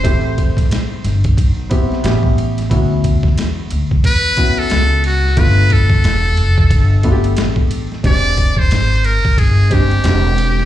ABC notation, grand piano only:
X:1
M:4/4
L:1/8
Q:"Swing 16ths" 1/4=90
K:D
V:1 name="Grand piano"
[A,=CEG]3 z2 [B,CEG] [B,^CEG]2 | [B,CEF]3 z2 [B,CEF]2 z | [A,B,D=F]3 z2 [A,B,DFG]2 z | [^G,^B,D=G]3 z2 [^G,B,D=G] [^G,B,D=G]2 |]